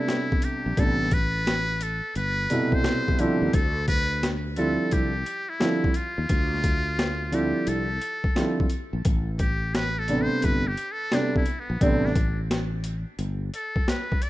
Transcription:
0.00 0.73 C3 medium
0.00 0.73 G3 medium
0.00 0.73 A3 soft
0.00 0.74 B3 soft
0.00 0.74 D4 medium
0.00 0.46 E4 medium
0.08 snare medium
0.08 closed hi-hat medium
0.32 kick medium
0.42 0.81 G4 medium
0.42 closed hi-hat medium
0.66 0.76 A#1 medium
0.77 2.00 A1 medium
0.77 1.05 C3 medium
0.77 1.05 G3 medium
0.77 1.05 A3 medium
0.77 1.06 B3 soft
0.77 1.06 D4 medium
0.77 1.15 A4 loud
0.77 kick loud
0.77 closed hi-hat medium
1.02 snare soft
1.11 1.84 B4 loud
1.11 kick medium
1.11 closed hi-hat medium
1.47 snare loud
1.47 closed hi-hat medium
1.81 2.17 A4 medium
1.81 closed hi-hat medium
2.15 2.46 G1 medium
2.15 2.76 B4 loud
2.15 closed hi-hat medium
2.50 3.49 B2 medium
2.50 3.49 C3 medium
2.50 3.18 G3 medium
2.50 3.49 A3 medium
2.50 3.19 E4 medium
2.50 closed hi-hat medium
2.72 3.22 C5 loud
2.72 kick medium
2.84 snare loud
2.84 closed hi-hat medium
3.08 kick medium
3.19 3.46 D3 medium
3.19 3.47 F3 medium
3.19 3.47 G3 medium
3.19 3.47 C4 medium
3.19 3.47 E4 medium
3.19 3.56 G4 medium
3.19 closed hi-hat medium
3.42 3.52 D#2 medium
3.53 4.76 D2 medium
3.53 3.88 A4 loud
3.53 kick loud
3.53 closed hi-hat medium
3.88 4.29 B4 loud
3.88 kick medium
3.88 closed hi-hat medium
4.23 snare loud
4.23 closed hi-hat medium
4.56 5.10 D3 medium
4.56 5.10 F3 medium
4.56 5.10 G3 medium
4.56 5.11 C4 medium
4.56 5.11 E4 medium
4.56 4.94 A4 medium
4.56 closed hi-hat medium
4.91 5.22 C2 medium
4.91 5.51 G4 loud
4.91 kick medium
4.91 closed hi-hat medium
5.26 closed hi-hat medium
5.49 5.98 E4 medium
5.60 5.88 D3 medium
5.60 5.88 F3 medium
5.60 5.88 G3 soft
5.60 5.88 C4 medium
5.60 5.88 E4 medium
5.60 snare loud
5.60 closed hi-hat medium
5.84 kick medium
5.94 7.36 F4 medium
5.94 closed hi-hat medium
6.18 6.28 D#2 medium
6.29 7.52 D2 loud
6.29 kick loud
6.29 closed hi-hat medium
6.54 snare soft
6.64 kick medium
6.64 closed hi-hat medium
6.99 snare loud
6.99 closed hi-hat medium
7.32 7.85 D3 medium
7.32 7.85 F3 medium
7.32 7.85 G3 medium
7.32 7.85 C4 medium
7.32 7.86 E4 medium
7.32 7.70 G4 medium
7.32 closed hi-hat medium
7.67 7.97 C2 medium
7.67 8.71 A4 medium
7.67 closed hi-hat medium
8.02 closed hi-hat medium
8.24 kick medium
8.35 8.63 D3 medium
8.35 8.64 F3 medium
8.35 8.64 G3 medium
8.35 8.64 C4 medium
8.35 8.64 E4 medium
8.35 snare loud
8.35 closed hi-hat medium
8.60 kick medium
8.70 closed hi-hat medium
8.93 9.04 A#1 medium
9.05 10.27 A1 medium
9.05 kick loud
9.05 closed hi-hat loud
9.39 9.77 G4 medium
9.39 kick medium
9.39 closed hi-hat medium
9.75 10.00 B4 loud
9.75 snare loud
9.75 closed hi-hat medium
9.99 10.23 A4 medium
10.08 10.61 C3 medium
10.08 10.61 G3 medium
10.08 10.62 A3 medium
10.08 10.62 B3 medium
10.08 10.62 D4 medium
10.08 closed hi-hat medium
10.22 10.46 C5 medium
10.42 10.74 G1 medium
10.42 10.69 B4 loud
10.42 kick medium
10.42 closed hi-hat medium
10.67 10.93 G4 medium
10.77 closed hi-hat medium
10.92 11.16 A4 medium
11.12 11.39 C3 medium
11.12 11.39 G3 medium
11.12 11.40 A3 medium
11.12 11.40 B3 soft
11.12 11.40 D4 medium
11.12 11.36 D4 medium
11.12 snare loud
11.12 closed hi-hat medium
11.36 11.61 E4 medium
11.36 kick medium
11.46 closed hi-hat medium
11.59 11.84 B3 medium
11.70 11.80 A#1 medium
11.81 13.03 A1 loud
11.81 12.08 C3 medium
11.81 12.09 G3 medium
11.81 12.09 A3 medium
11.81 12.09 B3 medium
11.81 12.07 C4 medium
11.81 12.09 D4 medium
11.81 kick loud
11.81 closed hi-hat medium
12.05 12.39 D4 medium
12.05 snare soft
12.15 kick medium
12.15 closed hi-hat medium
12.51 snare loud
12.51 closed hi-hat medium
12.84 closed hi-hat medium
13.19 13.49 G1 medium
13.19 closed hi-hat medium
13.54 13.91 A4 medium
13.54 closed hi-hat medium
13.76 kick medium
13.88 14.24 B4 medium
13.88 snare loud
13.88 closed hi-hat medium
14.12 kick medium
14.22 14.30 D5 medium
14.22 closed hi-hat medium

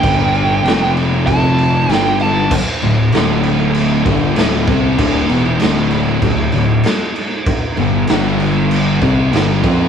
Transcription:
0.00 0.61 G1 loud
0.00 0.64 G2 loud
0.00 0.64 D3 loud
0.00 0.64 G3 loud
0.00 0.94 G5 loud
0.00 kick loud
0.00 crash medium
0.35 crash medium
0.65 1.85 F1 medium
0.65 1.88 F2 medium
0.65 1.89 C3 loud
0.65 1.89 F3 loud
0.65 snare loud
0.65 crash medium
0.97 crash medium
1.27 1.94 A5 loud
1.27 kick loud
1.27 crash medium
1.58 crash medium
1.88 2.47 G1 loud
1.88 2.50 G2 loud
1.88 2.51 D3 loud
1.88 2.51 G3 loud
1.88 snare loud
1.88 crash medium
1.94 2.17 G5 loud
2.20 2.51 A5 loud
2.20 crash medium
2.51 kick loud
2.51 crash loud
2.82 3.11 D1 medium
2.82 3.08 D2 medium
2.82 3.08 A2 medium
2.82 crash medium
3.12 4.03 D1 medium
3.12 4.05 D2 medium
3.12 4.05 A2 medium
3.12 4.06 D3 loud
3.12 snare loud
3.12 crash medium
3.43 crash medium
3.74 crash medium
4.06 4.35 G1 medium
4.06 4.36 G2 loud
4.06 4.37 D3 loud
4.06 4.37 G3 loud
4.06 kick loud
4.06 crash medium
4.36 4.66 D1 loud
4.36 4.67 D2 medium
4.36 4.68 A2 loud
4.36 4.68 D3 loud
4.36 snare loud
4.36 crash loud
4.67 4.97 C2 loud
4.67 4.98 C3 medium
4.67 4.98 G3 medium
4.67 4.99 C4 loud
4.67 kick loud
4.67 crash medium
4.98 5.28 D1 loud
4.98 5.29 D2 loud
4.98 5.29 A2 loud
4.98 5.29 D3 loud
4.98 kick loud
4.98 crash loud
5.30 5.59 E1 loud
5.30 5.59 E2 medium
5.30 5.60 B2 loud
5.30 5.60 E3 loud
5.30 crash medium
5.59 6.20 D1 medium
5.59 6.21 D2 loud
5.59 6.21 A2 loud
5.59 6.22 D3 loud
5.59 snare loud
5.59 crash loud
5.91 crash medium
6.22 6.51 D1 medium
6.22 6.47 D2 medium
6.22 6.48 A2 medium
6.22 kick loud
6.22 crash medium
6.52 6.83 D1 medium
6.52 6.79 D2 medium
6.52 6.79 A2 medium
6.52 crash medium
6.83 snare loud
6.83 crash medium
7.16 crash medium
7.46 kick loud
7.46 crash medium
7.77 8.07 G1 medium
7.77 8.03 G2 medium
7.77 8.03 D3 medium
7.77 crash medium
8.07 8.98 G1 medium
8.07 9.01 G2 medium
8.07 9.02 D3 loud
8.07 9.01 G3 loud
8.07 snare loud
8.07 crash medium
8.40 crash medium
8.71 crash medium
9.02 9.31 C2 loud
9.02 9.32 C3 medium
9.02 9.32 G3 loud
9.02 9.32 C4 loud
9.02 kick loud
9.02 crash medium
9.33 9.62 G1 loud
9.33 9.63 G2 loud
9.33 9.63 D3 loud
9.33 9.63 G3 loud
9.33 snare loud
9.33 crash loud
9.64 9.88 F2 loud
9.64 9.88 F3 medium
9.64 9.88 C4 medium
9.64 9.88 F4 medium
9.64 kick loud
9.64 crash medium

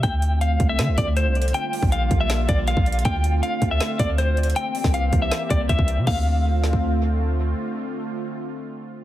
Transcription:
0.03 0.58 D2 loud
0.03 4.52 D3 medium
0.03 1.53 A3 medium
0.03 1.53 C4 medium
0.03 4.52 F4 medium
0.03 0.39 G5 loud
0.03 kick loud
0.03 closed hi-hat medium
0.22 closed hi-hat medium
0.41 0.68 F5 medium
0.41 closed hi-hat medium
0.60 0.80 C2 loud
0.60 kick medium
0.60 closed hi-hat medium
0.69 0.96 E5 medium
0.79 0.90 D3 loud
0.79 snare loud
0.79 closed hi-hat medium
0.88 0.97 C2 loud
0.98 1.27 D2 loud
0.98 1.12 D5 medium
0.98 kick loud
0.98 closed hi-hat medium
1.17 1.52 C5 medium
1.17 closed hi-hat medium
1.26 1.53 C2 loud
1.35 closed hi-hat medium
1.42 closed hi-hat medium
1.48 closed hi-hat medium
1.54 3.04 G3 medium
1.54 3.04 A#3 medium
1.54 1.90 G5 loud
1.54 closed hi-hat medium
1.73 open hi-hat medium
1.82 2.10 A#1 loud
1.82 kick loud
1.92 2.19 F5 medium
1.92 closed hi-hat medium
2.11 2.47 A#1 loud
2.11 kick medium
2.11 closed hi-hat medium
2.20 2.47 E5 medium
2.30 snare loud
2.30 closed hi-hat medium
2.49 2.76 A#1 loud
2.49 2.63 D5 medium
2.49 kick loud
2.49 closed hi-hat medium
2.67 3.03 F5 medium
2.67 closed hi-hat medium
2.77 3.04 A#1 loud
2.77 kick loud
2.86 closed hi-hat medium
2.92 closed hi-hat medium
2.99 closed hi-hat medium
3.05 3.41 D2 loud
3.05 4.55 A3 medium
3.05 6.04 C4 medium
3.05 3.41 G5 loud
3.05 kick loud
3.05 closed hi-hat medium
3.24 closed hi-hat medium
3.43 3.69 F5 medium
3.43 closed hi-hat medium
3.62 3.80 D2 loud
3.62 kick loud
3.62 closed hi-hat medium
3.71 3.98 E5 medium
3.80 snare loud
3.80 closed hi-hat medium
3.99 4.54 D2 loud
3.99 4.14 D5 medium
3.99 kick loud
3.99 closed hi-hat medium
4.18 4.54 C5 medium
4.18 closed hi-hat medium
4.37 closed hi-hat medium
4.43 closed hi-hat medium
4.50 closed hi-hat medium
4.56 6.05 E3 medium
4.56 6.06 A#3 medium
4.56 6.06 G4 medium
4.56 4.92 G5 medium
4.56 closed hi-hat medium
4.75 open hi-hat medium
4.84 5.11 C2 loud
4.84 kick medium
4.84 snare medium
4.94 5.20 F5 medium
4.94 closed hi-hat medium
5.13 5.31 C2 loud
5.13 kick medium
5.13 closed hi-hat medium
5.22 5.49 E5 medium
5.31 snare loud
5.31 closed hi-hat medium
5.50 5.69 C2 loud
5.50 5.65 D5 medium
5.50 kick medium
5.50 closed hi-hat medium
5.69 5.78 C2 loud
5.69 6.05 E5 medium
5.69 kick medium
5.69 closed hi-hat medium
5.79 5.99 C2 loud
5.79 kick loud
5.88 closed hi-hat medium
5.98 6.07 C3 loud
6.07 7.54 D2 loud
6.07 9.04 D3 medium
6.07 9.04 A3 medium
6.07 9.04 C4 medium
6.07 9.04 F4 medium
6.07 7.16 F5 medium
6.07 kick loud
6.07 crash medium
6.64 snare medium
6.73 kick medium

